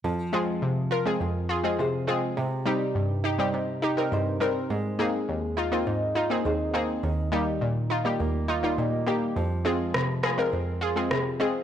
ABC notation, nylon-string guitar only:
X:1
M:4/4
L:1/8
Q:1/4=103
K:Fm
V:1 name="Nylon-string guitar"
F, A3 F2 [FAc] c | C, G3 E2 [EGc] c | A, A3 E2 [EAc] c | E, E3 B,2 [B,EG] G |
F, F3 C2 [CFA] A |]